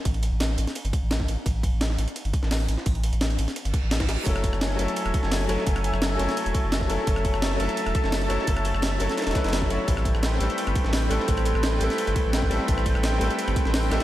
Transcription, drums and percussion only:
0.05 kick, closed hi-hat, ride
0.14 ride
0.23 closed hi-hat, ride
0.40 snare, closed hi-hat, ride
0.58 closed hi-hat, ride
0.67 snare, closed hi-hat
0.75 closed hi-hat, ride
0.85 closed hi-hat, ride
0.93 kick, closed hi-hat, ride
1.11 snare, closed hi-hat, ride
1.20 kick, snare
1.28 closed hi-hat, ride
1.46 kick, closed hi-hat, ride
1.63 kick, closed hi-hat, ride
1.81 snare, closed hi-hat, ride
1.90 snare
1.98 closed hi-hat, ride
2.08 closed hi-hat
2.16 closed hi-hat, ride
2.25 ride
2.34 kick, closed hi-hat, ride
2.43 snare
2.51 snare, closed hi-hat, open hi-hat
2.60 ride
2.68 closed hi-hat, ride
2.78 snare
2.86 kick, closed hi-hat, ride
2.95 ride
3.04 closed hi-hat, ride
3.13 closed hi-hat
3.21 snare, closed hi-hat, ride
3.30 closed hi-hat
3.39 closed hi-hat, ride
3.48 snare, closed hi-hat
3.56 closed hi-hat, ride
3.65 closed hi-hat, ride
3.74 kick, closed hi-hat, ride
3.91 snare, closed hi-hat, ride
4.00 kick, snare, ride
4.09 snare, closed hi-hat, ride
4.26 kick, closed hi-hat, ride
4.36 cross-stick
4.44 kick, closed hi-hat, ride
4.53 cross-stick
4.61 snare, closed hi-hat, ride
4.70 snare
4.79 closed hi-hat, ride
4.88 closed hi-hat
4.96 closed hi-hat, ride
5.06 cross-stick, ride
5.14 kick, closed hi-hat, ride
5.23 snare
5.32 snare, closed hi-hat, open hi-hat
5.41 ride
5.49 cross-stick, closed hi-hat, ride
5.58 snare
5.67 kick, closed hi-hat, ride
5.76 cross-stick, ride
5.84 closed hi-hat, ride
5.94 cross-stick
6.02 snare, closed hi-hat, ride
6.19 closed hi-hat, ride
6.29 snare, closed hi-hat
6.37 closed hi-hat, ride
6.46 closed hi-hat, ride
6.54 kick, closed hi-hat, ride
6.72 snare, closed hi-hat, ride
6.81 kick, snare
6.90 closed hi-hat, ride
7.07 kick, closed hi-hat, ride
7.16 cross-stick
7.25 kick, closed hi-hat, ride
7.34 cross-stick
7.42 snare, closed hi-hat, ride
7.51 snare
7.60 closed hi-hat, ride
7.69 closed hi-hat
7.77 closed hi-hat, ride
7.86 cross-stick, ride
7.95 kick, closed hi-hat, ride
8.04 snare
8.12 snare, closed hi-hat, open hi-hat
8.21 ride
8.30 cross-stick, closed hi-hat, ride
8.39 snare
8.47 kick, closed hi-hat, ride
8.56 cross-stick, ride
8.65 closed hi-hat, ride
8.75 cross-stick
8.82 snare, closed hi-hat, ride
9.00 closed hi-hat, ride
9.10 snare, closed hi-hat
9.18 snare, closed hi-hat, ride
9.22 snare, ride
9.27 snare, closed hi-hat, ride
9.31 snare, ride
9.35 kick, snare, closed hi-hat, ride
9.44 snare, ride
9.49 snare, ride
9.53 snare, closed hi-hat, ride
9.62 kick, snare
9.70 closed hi-hat, ride
9.88 kick, closed hi-hat, ride
9.97 cross-stick
10.05 kick, closed hi-hat, ride
10.15 cross-stick
10.23 snare, closed hi-hat, ride
10.32 snare
10.40 closed hi-hat, ride
10.50 closed hi-hat
10.58 closed hi-hat, ride
10.67 cross-stick, ride
10.75 kick, closed hi-hat, ride
10.84 snare
10.93 snare, closed hi-hat, open hi-hat
11.02 ride
11.11 cross-stick, closed hi-hat, ride
11.20 snare
11.28 kick, closed hi-hat, ride
11.37 cross-stick, ride
11.45 closed hi-hat, ride
11.55 cross-stick
11.63 snare, closed hi-hat, ride
11.81 closed hi-hat, ride
11.90 snare, closed hi-hat
11.98 closed hi-hat, ride
12.07 closed hi-hat, ride
12.16 kick, closed hi-hat, ride
12.33 snare, closed hi-hat, ride
12.42 kick, snare
12.51 closed hi-hat, ride
12.68 kick, closed hi-hat, ride
12.78 cross-stick
12.86 kick, closed hi-hat, ride
12.95 cross-stick
13.03 snare, closed hi-hat, ride
13.12 snare
13.21 closed hi-hat, ride
13.30 closed hi-hat
13.39 closed hi-hat, ride
13.48 cross-stick, ride
13.56 kick, closed hi-hat, ride
13.65 snare
13.74 snare, closed hi-hat, open hi-hat
13.83 ride
13.91 cross-stick, snare, closed hi-hat, ride
14.00 snare, ride

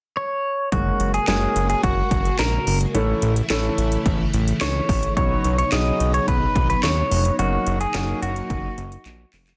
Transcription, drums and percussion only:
0.72 kick, closed hi-hat
1.00 closed hi-hat
1.14 closed hi-hat
1.28 snare, clap, closed hi-hat
1.56 closed hi-hat
1.70 closed hi-hat
1.83 kick, closed hi-hat
2.11 kick, closed hi-hat
2.25 closed hi-hat
2.39 snare, clap, closed hi-hat
2.67 open hi-hat
2.81 closed hi-hat
2.95 closed hi-hat
3.22 closed hi-hat
3.36 closed hi-hat
3.50 snare, clap, closed hi-hat
3.78 closed hi-hat
3.92 closed hi-hat
4.06 kick, closed hi-hat
4.34 closed hi-hat
4.48 closed hi-hat
4.61 snare, clap, closed hi-hat
4.89 kick, open hi-hat
5.03 closed hi-hat
5.17 kick, closed hi-hat
5.44 closed hi-hat
5.58 closed hi-hat
5.72 snare, clap, closed hi-hat
6.00 closed hi-hat
6.14 closed hi-hat
6.28 kick, closed hi-hat
6.56 kick, closed hi-hat
6.70 closed hi-hat
6.83 snare, clap, closed hi-hat
7.12 open hi-hat
7.25 closed hi-hat
7.39 closed hi-hat
7.67 closed hi-hat
7.81 closed hi-hat
7.94 snare, clap, closed hi-hat
8.23 closed hi-hat
8.36 closed hi-hat
8.50 kick, closed hi-hat
8.78 closed hi-hat
8.92 closed hi-hat
9.06 clap, closed hi-hat
9.33 clap, open hi-hat
9.47 clap, closed hi-hat

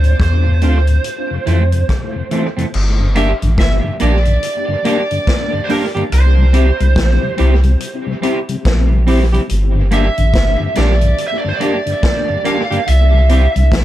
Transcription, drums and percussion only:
0.04 closed hi-hat
0.20 kick, cross-stick, closed hi-hat
0.62 closed hi-hat
0.87 closed hi-hat
1.04 closed hi-hat
1.47 closed hi-hat
1.72 closed hi-hat
1.89 kick, cross-stick, closed hi-hat
2.31 closed hi-hat
2.58 closed hi-hat
2.74 crash
3.16 closed hi-hat
3.42 closed hi-hat
3.58 kick, snare, closed hi-hat
4.00 closed hi-hat
4.25 closed hi-hat
4.43 closed hi-hat
4.85 closed hi-hat
5.11 closed hi-hat
5.27 kick, snare, closed hi-hat
5.69 open hi-hat
5.97 closed hi-hat
6.12 closed hi-hat
6.54 closed hi-hat
6.80 closed hi-hat
6.96 kick, snare, closed hi-hat
7.38 closed hi-hat
7.63 closed hi-hat
7.80 closed hi-hat
8.23 closed hi-hat
8.49 closed hi-hat
8.65 kick, snare, closed hi-hat
9.07 open hi-hat
9.34 closed hi-hat
9.49 closed hi-hat
9.91 closed hi-hat
10.18 closed hi-hat
10.34 kick, snare, closed hi-hat
10.75 snare, closed hi-hat
11.01 closed hi-hat
11.18 closed hi-hat
11.61 closed hi-hat
11.87 closed hi-hat
12.03 kick, snare, closed hi-hat
12.45 closed hi-hat
12.72 closed hi-hat
12.87 closed hi-hat
13.29 closed hi-hat
13.56 closed hi-hat
13.72 kick, snare, closed hi-hat

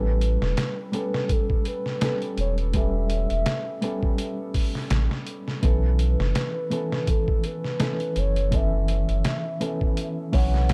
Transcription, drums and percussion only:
0.21 closed hi-hat
0.42 snare
0.57 snare, closed hi-hat
0.93 closed hi-hat
1.14 snare
1.29 kick, closed hi-hat
1.50 kick
1.65 closed hi-hat
1.86 snare
2.01 snare, closed hi-hat
2.22 closed hi-hat
2.38 closed hi-hat
2.58 closed hi-hat
2.74 kick, closed hi-hat
3.10 closed hi-hat
3.30 closed hi-hat
3.46 snare, closed hi-hat
3.82 closed hi-hat
4.03 kick
4.18 closed hi-hat
4.54 kick, open hi-hat
4.75 snare
4.90 snare, closed hi-hat
5.11 snare
5.27 closed hi-hat
5.48 snare
5.63 kick, closed hi-hat
5.99 closed hi-hat
6.20 snare
6.35 snare, closed hi-hat
6.71 closed hi-hat
6.92 snare
7.07 kick, closed hi-hat
7.28 kick
7.44 closed hi-hat
7.64 snare
7.80 snare, closed hi-hat
8.00 closed hi-hat
8.16 closed hi-hat
8.36 closed hi-hat
8.52 kick, closed hi-hat
8.88 closed hi-hat
9.09 closed hi-hat
9.25 snare, closed hi-hat
9.61 closed hi-hat
9.81 kick
9.97 closed hi-hat
10.33 kick, open hi-hat
10.54 snare
10.69 snare, closed hi-hat

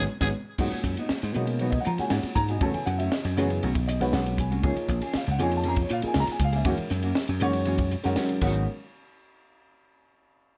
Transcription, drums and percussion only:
0.21 kick, snare
0.58 kick, crash
0.71 ride
0.83 kick, hi-hat pedal
0.97 ride
1.09 snare, ride
1.22 snare, ride
1.34 hi-hat pedal
1.47 ride
1.59 ride
1.72 kick, ride
1.85 hi-hat pedal
1.98 snare, ride
2.10 snare, ride
2.23 snare, ride
2.36 kick, hi-hat pedal
2.48 ride
2.61 kick, ride
2.74 ride
2.86 hi-hat pedal
3.00 ride
3.12 snare, ride
3.25 snare, ride
3.37 snare, hi-hat pedal
3.50 ride
3.63 ride
3.75 kick, ride
3.88 hi-hat pedal
4.01 snare, ride
4.13 snare, ride
4.26 ride
4.38 kick, hi-hat pedal
4.52 ride
4.63 kick, ride
4.77 ride
4.89 kick, hi-hat pedal
5.02 ride
5.13 snare, ride
5.27 ride
5.39 hi-hat pedal
5.51 ride
5.64 ride
5.76 kick, ride
5.89 hi-hat pedal
6.02 ride
6.14 snare, ride
6.27 snare, ride
6.40 kick, hi-hat pedal
6.53 ride
6.65 kick, ride
6.78 ride
6.90 snare, hi-hat pedal
7.03 ride
7.15 snare, ride
7.28 ride
7.40 hi-hat pedal
7.53 ride
7.65 ride
7.78 kick, ride
7.91 hi-hat pedal
8.03 snare, ride
8.16 snare, ride
8.29 ride
8.41 kick, crash

